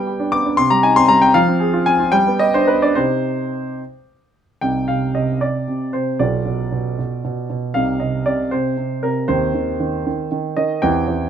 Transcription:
Already playing: G3 B3 G5
0.07 G4
0.20 D4
0.32 B3 D6
0.45 D4
0.57 C3 C6
0.70 G3 A#5
0.83 D#4 G#5
0.96 C4 C6
1.08 G3 A#5
1.22 C4 G5
1.34 F3 F5
1.48 C4
1.60 G#4
1.74 F4
1.86 C4 G#5
2.00 F4
2.12 G3 G5
2.27 B3
2.39 G4 D#5
2.54 D4 C5
2.68 B3 B4
2.82 D4 D5
2.95 C3 D#4 G4 C5
4.61 C2 C3 D#4 G4 G5
4.88 C3 F5
5.15 C3 D#5
5.41 C3 D5
5.68 C3
5.93 C3 C5
6.19 B1 B2 F4 G4 D5
6.46 B2
6.72 B2
6.99 B2
7.24 B2
7.50 B2
7.74 C2 C3 D#4 G4 F5
8.00 C3 D#5
8.26 C3 D5
8.51 C3 C5
8.77 C3
9.03 C3 A#4
9.28 D#2 D#3 C4 G4 C5
9.55 D#3
9.80 D#3
10.07 D#3
10.32 D#3
10.57 D#3 D#5
10.82 E2 E3 C4 G4 G5
11.08 E3

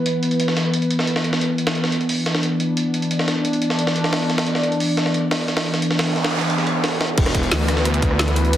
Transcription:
Already playing: E3 B3 B4
0.06 closed hi-hat
0.23 closed hi-hat
0.31 closed hi-hat
0.40 closed hi-hat
0.48 snare
0.57 snare, closed hi-hat
0.74 closed hi-hat
0.82 closed hi-hat
0.91 closed hi-hat
0.99 snare
1.07 closed hi-hat
1.16 snare
1.24 closed hi-hat
1.33 snare
1.41 closed hi-hat
1.58 closed hi-hat
1.67 snare, closed hi-hat
1.75 D4, closed hi-hat
1.84 snare
1.92 closed hi-hat
2.01 closed hi-hat
2.09 open hi-hat
2.26 snare, closed hi-hat
2.35 snare
2.43 closed hi-hat
2.60 closed hi-hat
2.77 closed hi-hat
2.94 closed hi-hat
3.02 closed hi-hat
3.11 closed hi-hat
3.19 snare
3.28 snare, closed hi-hat
3.45 closed hi-hat
3.53 closed hi-hat
3.62 closed hi-hat
3.70 snare
3.79 closed hi-hat
3.87 snare
3.96 closed hi-hat
4.04 snare
4.13 snare, open hi-hat
4.30 snare, closed hi-hat
4.38 snare, open hi-hat
4.47 closed hi-hat
4.55 snare
4.63 closed hi-hat
4.72 closed hi-hat
4.80 open hi-hat
4.97 snare, closed hi-hat
5.06 snare
5.14 closed hi-hat
5.31 snare, open hi-hat
5.48 snare, closed hi-hat
5.57 snare, open hi-hat
5.74 snare, closed hi-hat
5.82 closed hi-hat, noise sweep
5.91 snare
5.99 snare, open hi-hat
6.16 snare, closed hi-hat
6.24 snare, open hi-hat
6.41 snare, closed hi-hat
6.50 closed hi-hat
6.58 snare
6.67 closed hi-hat
6.84 snare, open hi-hat
7.01 snare, open hi-hat
7.18 E1 E3 B3 B4, kick, closed hi-hat, crash
7.26 cross-stick, snare, closed hi-hat
7.35 kick, closed hi-hat
7.43 closed hi-hat
7.51 D2, snare, closed hi-hat, open hi-hat
7.68 cross-stick, snare, closed hi-hat, open hi-hat
7.77 snare
7.85 cross-stick, closed hi-hat
7.94 closed hi-hat
8.02 D2, kick, closed hi-hat
8.11 cross-stick
8.19 snare, closed hi-hat
8.28 closed hi-hat
8.36 closed hi-hat, open hi-hat
8.45 closed hi-hat
8.53 closed hi-hat

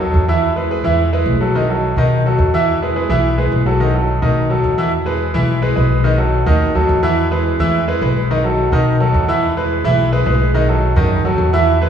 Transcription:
Already playing: D#2
0.00 F#3 F#4 A4
0.14 E2
0.28 E3 E4 E5
0.56 G#3 G#4 B4
0.70 G#3 G#4 B4
0.84 E2 E3 E4 E5
1.13 G#3 G#4 B4
1.26 B1
1.41 F#3 F#4 A4
1.55 D#3 D#4 D#5
1.69 F#3 F#4 A4
1.96 B2 D#3 D#4 D#5
2.26 F#3 F#4 A4
2.39 E2
2.54 E3 E4 E5
2.82 G#3 G#4 B4
2.96 G#3 G#4 B4
3.09 B1 E3 E4 E5
3.38 G#3 G#4 B4
3.52 B1
3.66 F#3 F#4 A4
3.80 D#3 D#4 D#5
3.94 F#3 F#4 A4
4.22 B2 D#3 D#4 D#5
4.50 F#3 F#4 A4
4.64 E2
4.78 E3 E4 E5
5.06 G#3 G#4 B4
5.34 B1 E3 E4 E5
5.62 G#3 G#4 B4
5.76 B1 G#3 G#4 B4
6.04 D#3 D#4 D#5
6.18 F#3 F#4 A4
6.46 D#2 D#3 D#4 D#5
6.75 D#2 F#3 F#4 A4
6.89 E2
7.03 E3 E4 E5
7.31 G#3 G#4 B4
7.59 E2 E3 E4 E5
7.88 G#3 G#4 B4
8.01 B1 G#3 G#4 B4
8.31 D#3 D#4 D#5
8.44 F#3 F#4 A4
8.72 B2 D#3 D#4 D#5
9.00 F#3 F#4 A4
9.14 E2
9.28 E3 E4 E5
9.57 G#3 G#4 B4
9.84 B1 E3 E4 E5
10.12 G#3 G#4 B4
10.26 B1 G#3 G#4 B4
10.54 D#3 D#4 D#5
10.68 F#3 F#4 A4
10.96 F#2 D#3 D#4 D#5
11.24 F#2 F#3 F#4 A4
11.38 E2
11.53 E3 E4 E5
11.81 G#3 G#4 B4

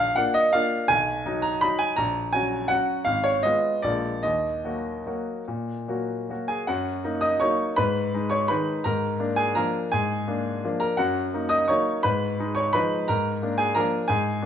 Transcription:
Already playing: A#1 F5
0.16 A#3 D4 F4 F#5
0.34 D#5
0.53 A#3 D4 F4 F5
0.88 B1 G#5
1.26 F#3 D#4
1.42 A#5
1.61 F#3 D#4 B5
1.79 G#5
1.96 A#1 A#5
2.33 F#3 C#4 F#4 G#5
2.68 F#3 C#4 F#4 F#5
3.05 G#1 F5
3.24 C#5
3.43 G#3 B3 F4 D#5
3.82 A#1 G#3 A#3 F4 D5
4.23 D#2 D#5
4.64 F#3 A#3 F#4
5.06 F#3 A#3 F#4
5.48 A#2
5.88 F#3 A#3 F#4
6.29 F#3 A#3 F#4
6.48 G#4 G#5
6.67 F#2 F#4 F#5
7.04 A#3 D#4
7.21 D#5 D#6
7.40 F#3 A#3 D#4 C#5 C#6
7.76 G#2 B4 B5
8.14 G#3 D#4
8.30 C#5 C#6
8.48 D#3 G#3 D#4 B4 B5
8.84 G#2 A#4 A#5
9.19 A#3 D4
9.36 G#4 G#5
9.55 F3 A#3 D4 A#4 A#5
9.92 G#2 G#4 G#5
10.28 A#3 D4
10.64 F3 A#3 D4
10.80 A#4 A#5
10.97 F#2 F#4 F#5
11.34 A#3 D#4
11.49 D#5 D#6
11.68 F#3 A#3 D#4 C#5 C#6
12.03 G#2 B4 B5
12.40 G#3 D#4
12.55 C#5 C#6
12.73 F3 G#3 D#4 B4 B5
13.08 G#2 A#4 A#5
13.42 A#3 D4
13.58 G#4 G#5
13.75 F3 A#3 D4 A#4 A#5
14.08 G#2 G#4 G#5
14.42 A#3 D4

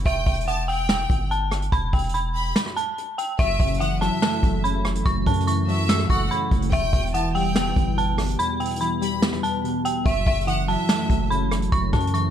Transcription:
0.06 E1 E5 G5, kick, closed hi-hat
0.26 E1 E5, kick, closed hi-hat
0.33 closed hi-hat
0.40 closed hi-hat
0.47 F#5 A5, closed hi-hat
0.68 G5, open hi-hat
0.89 G5, snare, hi-hat pedal
1.10 G1, kick, closed hi-hat
1.31 A5, closed hi-hat
1.51 cross-stick, closed hi-hat
1.62 closed hi-hat
1.72 E1 B5, kick, closed hi-hat
1.93 E1 G5, kick, closed hi-hat
1.98 closed hi-hat
2.04 closed hi-hat
2.09 closed hi-hat
2.14 B5, closed hi-hat
2.35 B5, open hi-hat
2.56 snare, hi-hat pedal
2.66 cross-stick
2.76 A5, closed hi-hat
2.98 closed hi-hat
3.18 G5, closed hi-hat
3.38 F#1 F#2 E5, kick, closed hi-hat
3.60 F#1 C#3 E5, kick, closed hi-hat
3.67 closed hi-hat
3.74 closed hi-hat
3.80 E3 F#5, closed hi-hat
4.01 F#3 E5 A5, cross-stick, closed hi-hat
4.22 A3 A5, snare
4.43 F#1 F#2, kick, closed hi-hat
4.64 C#3 B5, closed hi-hat
4.85 cross-stick, closed hi-hat
4.95 closed hi-hat
5.06 F#1 F#2 C#6, kick, closed hi-hat
5.26 F#2 C#3 A5, kick, closed hi-hat
5.33 closed hi-hat
5.40 closed hi-hat
5.47 E3 C#6, closed hi-hat
5.68 F#3 E5, open hi-hat
5.89 A3 E6, snare, hi-hat pedal
5.99 cross-stick
6.10 F#1 F#2 F#5 C#6, kick, closed hi-hat
6.31 C#3 B5, closed hi-hat
6.51 F#1, kick, closed hi-hat
6.62 closed hi-hat
6.72 E1 E2 E5 G5, kick, closed hi-hat
6.93 E1 B2 E5, kick, closed hi-hat
7.00 closed hi-hat
7.07 closed hi-hat
7.14 E3 F#5 A5, closed hi-hat
7.35 G3 G5, open hi-hat
7.55 B3 G5, snare, hi-hat pedal
7.76 G1 E2, kick, closed hi-hat
7.97 B2 A5, closed hi-hat
8.18 cross-stick, closed hi-hat, open hi-hat
8.29 closed hi-hat
8.39 E2 B5, closed hi-hat
8.60 B2 G5, closed hi-hat
8.65 closed hi-hat
8.70 closed hi-hat
8.76 closed hi-hat
8.80 E3 B5, closed hi-hat
9.01 G3 B5, closed hi-hat
9.22 B3, snare
9.33 cross-stick
9.43 E2 A5, closed hi-hat
9.64 B2, closed hi-hat
9.85 G5, closed hi-hat
10.05 F#1 F#2 E5, kick, closed hi-hat
10.26 F#1 C#3 E5, kick, closed hi-hat
10.33 closed hi-hat
10.40 closed hi-hat
10.47 E3 F#5, closed hi-hat
10.68 F#3 E5 A5, open hi-hat
10.89 A3 A5, snare, hi-hat pedal
11.10 F#1 F#2, kick, closed hi-hat
11.30 C#3 B5, closed hi-hat
11.52 cross-stick, closed hi-hat
11.62 closed hi-hat
11.72 F#1 F#2 C#6, kick, closed hi-hat
11.93 F#2 C#3 A5, kick, cross-stick, closed hi-hat
12.00 closed hi-hat
12.07 closed hi-hat
12.14 E3 C#6, closed hi-hat

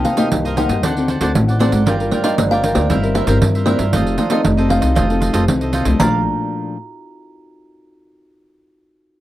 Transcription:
Already playing: C3 A#3 D#4 G4
0.05 D#4 A#4 C5 D#5 F5, pandeiro
0.17 A#3 D#4 G4 A#4 C5 D#5, pandeiro
0.32 C2 G2, pandeiro
0.45 A#4 C5 D#5, pandeiro
0.56 A#3 D#4 G4 A#4 C5 D#5 F#5, pandeiro
0.69 G2 A#4 C5 D#5, pandeiro
0.83 D2 D3 C4 D4 F#4 A4 C5 D5 F#5, pandeiro
0.97 C4 F#4 A4, pandeiro
1.08 D4 C5 D5 F#5, pandeiro
1.21 D2 C4 D4 F#4 A4 C5 D5 F#5, pandeiro
1.35 A1 A2, pandeiro
1.48 C5 D5 F#5, pandeiro
1.59 C4 D4 F#4 A4 C5 D5 F#5, pandeiro
1.72 G#1 C5 D5 F#5, pandeiro
1.86 G1 G3 D4 F4 A#4 D5 G5, pandeiro
2.00 D4 F4 A#4, pandeiro
2.12 F4 A#4 D5 G5, pandeiro
2.24 D4 F4 A#4 D5 D#5 G5, pandeiro
2.37 G1 D3 D5, pandeiro
2.51 A#4 D5 F5 G5, pandeiro
2.63 D4 F4 A#4 D5 G5, pandeiro
2.75 D2 A#4 D5 G5, pandeiro
2.89 G1 G3 C4 E4 A#4 C5 E5, pandeiro
3.02 C4 E4 A#4, pandeiro
3.15 E4 A#4 C5 E5, pandeiro
3.27 G1 C4 E4 A#4 C5 E5, pandeiro
3.42 G2 G3, pandeiro
3.55 A#4 C5 E5, pandeiro
3.66 C4 E4 A#4 C5 D5 E5, pandeiro
3.78 G2 A#4 C5 E5, pandeiro
3.93 F1 F3 C4 D#4 F4 A4 C5 D#5, pandeiro
4.07 pandeiro
4.17 F4 A4 C5 D5 D#5, pandeiro
4.30 C4 D#4 F4 A4 C5 D#5, pandeiro
4.44 F1 C3, pandeiro
4.57 C4 D#4 A4 C5 D#5, pandeiro
4.69 F4 A4 C5 D#5 F5, pandeiro
4.81 C2 C4 D#4 A4 C5 D#5, pandeiro
4.95 F1 F3 F4 A4 C5 D#5, pandeiro
5.10 C4 D#4 A4, pandeiro
5.20 F4 A4 C5 D#5, pandeiro
5.33 F1 F4 A4 C5 D#5, pandeiro
5.48 C2 C3 C4 D#4 A4, pandeiro
5.61 A4 C5 D#5, pandeiro
5.73 F4 A4 C5 D#5, pandeiro
5.85 C2 F3 A3 D4 A4 C5 D#5, pandeiro
5.99 A#1 A#2 F3 A3 D4 A#4 D5 F5 A5 A#5, pandeiro

